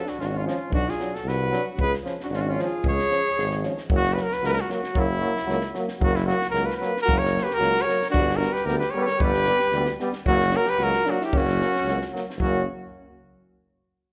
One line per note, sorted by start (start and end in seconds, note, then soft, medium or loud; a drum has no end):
0.00 0.10 A4 medium
0.05 0.20 D4 medium
0.05 0.22 F#4 medium
0.05 snare soft
0.18 0.48 G#1 medium
0.18 0.25 C#4 medium
0.18 0.28 F4 medium
0.18 snare soft
0.24 0.33 D4 medium
0.24 0.39 F#4 medium
0.31 0.43 C#4 medium
0.37 0.47 F4 medium
0.43 0.56 F3 medium
0.43 0.69 C#4 medium
0.48 0.58 C#4 medium
0.48 0.71 F4 medium
0.48 snare soft
0.70 0.85 B1 loud
0.70 0.90 D4 medium
0.70 0.92 F#4 loud
0.70 kick medium
0.88 1.15 F4 medium
0.88 1.16 G#4 medium
0.88 snare soft
0.99 1.10 F#3 medium
0.99 1.11 D4 medium
0.99 snare soft
1.14 1.26 F#4 medium
1.14 1.30 A4 medium
1.14 snare soft
1.24 1.54 C2 medium
1.24 1.78 F#4 medium
1.28 1.65 B4 loud
1.28 snare soft
1.50 1.61 F#3 medium
1.50 1.62 D4 medium
1.50 snare soft
1.77 1.92 C#2 medium
1.77 1.92 B4 loud
1.77 kick medium
1.83 1.93 G#4 medium
1.94 snare soft
2.04 2.15 F3 medium
2.04 2.15 C#4 medium
2.04 snare soft
2.20 2.25 C#4 medium
2.20 2.30 F#4 medium
2.20 snare soft
2.25 2.29 D4 medium
2.25 2.36 D4 medium
2.30 2.59 G#1 medium
2.30 2.37 F#4 medium
2.30 snare soft
2.34 2.41 C#4 medium
2.34 2.42 F4 loud
2.39 2.49 D4 medium
2.39 2.51 F#4 medium
2.48 2.59 C#4 medium
2.48 2.60 F4 medium
2.57 2.68 F3 medium
2.57 2.67 C#4 medium
2.57 snare soft
2.62 2.85 F4 medium
2.62 2.86 G#4 medium
2.84 2.99 C#2 loud
2.84 3.61 G#4 loud
2.84 kick medium
2.89 3.62 C#5 loud
2.99 snare soft
3.08 3.20 F3 medium
3.08 3.22 C#4 medium
3.08 snare soft
3.38 3.67 G#1 medium
3.38 snare soft
3.51 snare soft
3.62 3.73 F3 medium
3.62 3.73 C#4 medium
3.62 snare soft
3.77 snare soft
3.89 4.19 F#1 loud
3.89 4.00 F#3 medium
3.89 4.00 A#3 medium
3.89 kick loud
3.96 4.16 F#4 loud
4.03 snare soft
4.14 4.26 F#3 medium
4.14 4.27 A#3 medium
4.14 4.24 B4 medium
4.14 snare soft
4.22 4.35 A#4 loud
4.31 4.47 B4 loud
4.31 snare soft
4.42 4.57 C#2 medium
4.42 4.53 F#3 medium
4.42 4.55 A#3 medium
4.42 4.49 A#4 loud
4.42 snare soft
4.47 4.55 B4 loud
4.53 4.62 A#4 loud
4.53 snare soft
4.60 4.72 F#4 medium
4.68 4.79 F#3 medium
4.68 4.81 A#3 medium
4.68 snare soft
4.73 5.00 F#4 medium
4.83 snare soft
4.93 5.25 F#1 medium
4.93 5.05 F#3 medium
4.93 5.07 A#3 medium
4.93 kick medium
4.99 5.77 E4 loud
5.20 5.31 F#3 medium
5.24 5.35 A#3 medium
5.37 snare soft
5.46 5.62 C#2 medium
5.46 5.57 F#3 medium
5.46 snare soft
5.50 5.60 A#3 medium
5.61 snare soft
5.74 5.85 F#3 medium
5.74 5.87 A#3 medium
5.74 snare soft
5.88 snare soft
6.00 6.30 F#1 loud
6.00 6.11 F#3 medium
6.00 6.17 F#4 loud
6.00 kick medium
6.04 6.14 A#3 medium
6.15 6.28 E4 medium
6.15 snare soft
6.25 6.36 F#3 medium
6.25 6.49 F#4 loud
6.25 snare soft
6.30 6.41 A#3 medium
6.42 snare soft
6.50 6.68 C#2 medium
6.50 6.67 A#4 loud
6.54 6.65 F#3 medium
6.54 6.68 A#3 medium
6.54 snare soft
6.65 6.76 B4 medium
6.70 snare soft
6.77 6.91 F#3 medium
6.77 7.01 B4 medium
6.82 6.94 A#3 medium
6.82 snare soft
6.97 snare soft
7.02 7.21 F#4 loud
7.02 7.19 A#4 loud
7.07 7.37 F#1 loud
7.07 7.18 F#3 medium
7.07 7.20 A#3 medium
7.07 kick loud
7.18 7.46 A#4 medium
7.18 7.44 C#5 loud
7.25 snare soft
7.35 7.46 F#3 medium
7.35 7.47 A#3 medium
7.35 snare soft
7.43 7.60 G4 medium
7.43 7.55 B4 loud
7.51 7.83 A#4 loud
7.51 snare soft
7.58 7.75 C#2 medium
7.58 7.72 F#3 medium
7.58 7.87 F#4 loud
7.62 7.73 A#3 medium
7.62 snare soft
7.76 snare soft
7.81 8.10 A#4 medium
7.81 8.10 C#5 loud
7.88 7.98 F#3 medium
7.88 7.99 A#3 medium
7.88 snare soft
8.02 snare soft
8.10 8.43 G1 loud
8.10 8.40 D4 loud
8.10 8.38 F#4 loud
8.10 kick medium
8.15 8.26 G3 medium
8.15 8.25 B3 medium
8.30 snare soft
8.36 8.56 F#4 medium
8.36 8.54 A#4 loud
8.40 8.53 G3 medium
8.40 8.51 B3 medium
8.40 snare soft
8.53 8.66 G4 medium
8.53 8.67 B4 medium
8.53 snare soft
8.65 8.80 D2 medium
8.65 8.79 G3 medium
8.65 8.77 B3 medium
8.65 8.79 G4 medium
8.65 8.78 A#4 loud
8.65 snare soft
8.78 8.96 G4 medium
8.78 8.92 B4 medium
8.78 snare soft
8.90 9.02 C#5 medium
8.94 9.06 G3 medium
8.94 9.05 B3 medium
8.94 9.03 A#4 medium
9.01 9.09 G4 medium
9.01 9.05 B4 medium
9.01 9.19 C#5 loud
9.07 9.17 A#4 medium
9.07 snare soft
9.17 9.49 G1 loud
9.17 9.95 G4 loud
9.17 9.96 B4 loud
9.17 kick loud
9.21 9.32 G3 medium
9.21 9.32 B3 medium
9.33 snare soft
9.45 9.58 G3 medium
9.45 snare soft
9.49 9.59 B3 medium
9.59 snare soft
9.71 9.87 D2 medium
9.71 9.85 G3 medium
9.71 snare soft
9.76 9.86 B3 medium
9.86 snare soft
10.00 10.11 G3 medium
10.00 10.11 B3 medium
10.00 snare soft
10.13 snare soft
10.24 10.54 F#1 loud
10.24 10.38 F#3 medium
10.24 10.52 C#4 medium
10.24 10.58 F#4 loud
10.24 kick medium
10.29 10.39 A#3 medium
10.40 snare soft
10.51 10.64 F#3 medium
10.51 10.65 A#3 medium
10.51 10.68 F#4 medium
10.51 snare soft
10.56 10.71 A#4 loud
10.66 10.80 G4 medium
10.66 10.85 B4 loud
10.66 snare soft
10.79 10.94 C#2 loud
10.79 10.91 F#3 medium
10.79 10.93 A#3 medium
10.79 11.08 F#4 medium
10.79 snare soft
10.83 11.12 A#4 loud
10.93 snare soft
11.06 11.17 F#3 medium
11.06 11.19 A#3 medium
11.06 11.20 D4 medium
11.06 snare soft
11.10 11.22 F#4 medium
11.21 11.35 E4 medium
11.21 11.39 G4 medium
11.21 snare soft
11.32 11.61 F#1 loud
11.32 11.44 F#3 medium
11.32 11.45 A#3 medium
11.32 12.13 C#4 loud
11.32 kick medium
11.37 12.15 F#4 loud
11.48 snare soft
11.60 11.71 F#3 medium
11.60 11.71 A#3 medium
11.60 snare soft
11.76 snare soft
11.83 11.99 C#2 medium
11.83 11.97 F#3 medium
11.83 11.97 A#3 medium
11.88 snare soft
12.02 snare soft
12.12 12.23 F#3 medium
12.12 12.24 A#3 medium
12.16 snare soft
12.30 snare soft
12.37 12.63 F#1 medium
12.37 12.64 F#3 medium
12.37 12.65 A#3 medium
12.37 12.63 C#4 medium
12.37 kick medium
12.41 12.65 F#4 loud